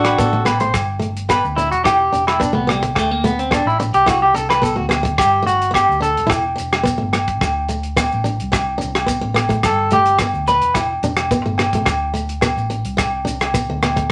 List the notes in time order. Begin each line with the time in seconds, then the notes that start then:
Already playing: A1 D4 F#4
0.04 B4, cross-stick, closed hi-hat, low agogo
0.18 A1 B3 A4, kick, closed hi-hat, maracas
0.33 A3
0.45 B3 B4, cross-stick, closed hi-hat, low agogo, maracas
0.60 A3 C5, closed hi-hat
0.74 G1, kick, cross-stick, closed hi-hat, low agogo, maracas
1.00 A3, closed hi-hat
1.17 closed hi-hat
1.29 B3 B4, kick, cross-stick, closed hi-hat, low agogo, maracas
1.45 D2, maracas
1.56 D4 E4, closed hi-hat, maracas
1.72 E1 F#4, closed hi-hat
1.84 E4 G4, kick, cross-stick, closed hi-hat, low agogo, maracas
2.13 E1 D4, closed hi-hat, maracas
2.27 E4, cross-stick, closed hi-hat, low agogo, maracas
2.40 B3 D4, kick, closed hi-hat, maracas
2.53 C2 A3 B3
2.67 G3 B3, cross-stick, closed hi-hat, low agogo, maracas
2.83 muted steel-string acoustic guitar stroke, muted clean electric guitar stroke, kick, closed hi-hat
2.95 D2 A3, kick, cross-stick, closed hi-hat, low agogo, maracas
3.11 A#3
3.24 A3 B3, closed hi-hat, maracas
3.39 C4, closed hi-hat
3.51 B3 D4, kick, cross-stick, closed hi-hat, low agogo, maracas
3.66 A1 E4
3.70 maracas
3.80 D4, muted clean electric guitar stroke, closed hi-hat, maracas
3.94 C2 G4, closed hi-hat
4.06 E4 F#4, kick, cross-stick, closed hi-hat, low agogo, maracas
4.22 G4
4.34 C2 D4 A4, closed hi-hat, maracas
4.49 B4, cross-stick, closed hi-hat, low agogo, maracas
4.62 B3 A4, kick, closed hi-hat, maracas
4.76 D2 A3 F#4
4.89 B3, cross-stick, closed hi-hat, low agogo, maracas
5.03 muted steel-string acoustic guitar stroke, kick, closed hi-hat
5.18 G1 G4, kick, cross-stick, closed hi-hat, low agogo, maracas
5.43 A3 F#4
5.47 closed hi-hat, maracas
5.62 closed hi-hat
5.71 B3 G4, kick, low agogo
5.75 cross-stick, closed hi-hat, maracas
5.89 D2, maracas
6.01 D4 A4, closed hi-hat, maracas
6.17 E1, closed hi-hat
6.27 E4, kick, cross-stick, closed hi-hat, low agogo
6.32 maracas
6.56 E1 D4, closed hi-hat, maracas
6.72 cross-stick, closed hi-hat, low agogo
6.84 B3, kick, closed hi-hat, maracas
6.98 A3
7.02 G1
7.13 B3, cross-stick, closed hi-hat, low agogo, maracas
7.28 kick, closed hi-hat
7.41 D2, kick, cross-stick, closed hi-hat, low agogo, maracas
7.69 A3, closed hi-hat, maracas
7.83 closed hi-hat
7.97 B3, kick, cross-stick, closed hi-hat, low agogo, maracas
8.12 A1, maracas
8.24 D4, closed hi-hat, maracas
8.40 C2, closed hi-hat
8.52 E4, kick, cross-stick, closed hi-hat, low agogo, maracas
8.78 D4, closed hi-hat, maracas
8.83 C2
8.95 cross-stick, closed hi-hat, low agogo, maracas
9.07 B3, kick, closed hi-hat, maracas
9.21 A1, muted steel-string acoustic guitar stroke
9.34 B3, cross-stick, closed hi-hat, low agogo, maracas
9.49 A3, kick, closed hi-hat, maracas
9.63 G1 A4, kick, cross-stick, closed hi-hat, low agogo, maracas
9.91 A3 G4, closed hi-hat, maracas
10.06 closed hi-hat
10.18 B3, muted clean electric guitar stroke, kick, cross-stick, closed hi-hat, low agogo, maracas
10.33 D2, maracas
10.47 B4, muted steel-string acoustic guitar stroke, closed hi-hat, maracas
10.61 E1, closed hi-hat
10.74 E4, kick, cross-stick, closed hi-hat, low agogo, maracas
11.02 E1 D4, closed hi-hat, maracas
11.17 cross-stick, closed hi-hat, low agogo, maracas
11.31 B3, kick, closed hi-hat, maracas
11.45 G1 A3
11.58 B3, cross-stick, closed hi-hat, low agogo, maracas
11.73 A3, kick, closed hi-hat
11.86 D2, kick, cross-stick, closed hi-hat, low agogo, maracas
12.14 A3, closed hi-hat, maracas
12.29 closed hi-hat
12.41 B3, kick, cross-stick, closed hi-hat, low agogo, maracas
12.56 A1, maracas
12.70 D4, closed hi-hat
12.85 C2, closed hi-hat
12.97 muted steel-string acoustic guitar stroke, kick, cross-stick, closed hi-hat, low agogo, maracas
13.25 C2 D4, closed hi-hat, maracas
13.40 cross-stick, closed hi-hat, low agogo, maracas
13.54 B3, kick, closed hi-hat, maracas
13.69 D2 A3
13.83 B3, cross-stick, closed hi-hat, low agogo, maracas
13.96 A3, kick, closed hi-hat